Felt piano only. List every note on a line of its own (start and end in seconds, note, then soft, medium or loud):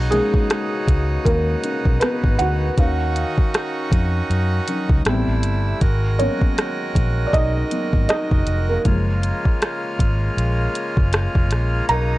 0.11 0.84 G#3 medium
0.11 0.64 A#3 medium
0.11 0.65 C#4 soft
0.11 0.65 D#4 medium
0.11 0.83 G#4 loud
1.25 1.62 A#3 medium
1.25 2.03 A#4 medium
1.64 1.98 A#3 soft
1.64 1.98 C#4 soft
1.64 1.98 D#4 soft
2.00 2.37 B3 medium
2.00 2.40 B4 medium
2.39 5.40 F#4 medium
2.39 5.39 F#5 medium
2.78 5.01 D#3 medium
2.78 4.67 C#4 medium
2.78 5.02 F5 medium
4.68 5.02 F#3 soft
4.68 5.02 C#4 soft
4.68 5.02 D#4 soft
5.06 5.78 G3 medium
5.06 5.78 B3 medium
5.06 5.78 C4 medium
6.19 7.70 F#3 medium
6.19 7.70 A#3 soft
6.19 7.70 B3 medium
6.19 7.24 C#4 medium
6.19 7.31 C#5 medium
7.27 7.33 D5 medium
7.33 8.06 D#4 medium
7.33 8.05 D#5 loud
7.71 8.05 F#3 soft
7.71 8.06 A#3 soft
7.71 8.06 B3 soft
8.09 8.66 D#4 medium
8.09 8.71 D#5 loud
8.69 8.85 A#3 medium
8.69 9.79 A#4 medium
8.85 11.85 F3 medium
8.85 11.85 G#3 medium
8.85 11.85 A#3 medium
11.89 12.18 A#4 medium
11.89 12.18 A#5 loud